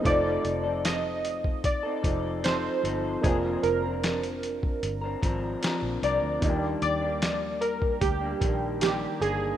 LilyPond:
<<
  \new Staff \with { instrumentName = "Synth keys" } { \time 4/4 \key ees \major \tempo 4 = 75 d''4 ees''4 d''4 c''4 | aes'8 bes'2 r4 d''8~ | d''8 d''4 bes'8 g'4 g'8 aes'8 | }
  \new Staff \with { instrumentName = "Upright piano" } { \time 4/4 \key ees \major <a ees' f' c''>1 | <bes d' f' c''>1 | <bes ees' f' d'' g''>1 | }
  \new Staff \with { instrumentName = "Clean electric guitar" } { \time 4/4 \key ees \major <f c' ees' a'>8. <c' ees' a'>4. <c' ees' a'>16 <f c' ees' a'>8 <f c' ees' a'>8 <f c' ees' a'>8 | <f c' d' bes'>8. <c' d' bes'>4. <c' d' bes'>16 <f c' d' bes'>8 <f c' d' bes'>8 <f c' d' bes'>8 | <ees g bes d'>8. <g bes d'>4. <g bes d'>16 <ees g bes d'>8 <ees g bes d'>8 <ees bes d'>8 | }
  \new Staff \with { instrumentName = "Fingered electric bass" } { \clef bass \time 4/4 \key ees \major f,,8 f,,4. g,,8 f,,4 g,,8 | f,,8 f,,4. g,,8 aes,,8 r16 bes,,16 c,16 d,16 | ees,8 ees,4. d,8 bes,,4 g,,8 | }
  \new DrumStaff \with { instrumentName = "Drums" } \drummode { \time 4/4 <hh bd>8 hh8 <hh sn>8 hh16 bd16 <hh bd>8 <hh bd>8 <hh sn>8 hh8 | <hh bd>8 hh8 <hh sn>16 hh16 hh16 bd16 hh8 <hh bd>8 <hh sn>8 hh8 | <hh bd>8 hh8 <hh sn>8 hh16 bd16 <hh bd>8 <hh bd>8 <hh sn>8 hh8 | }
>>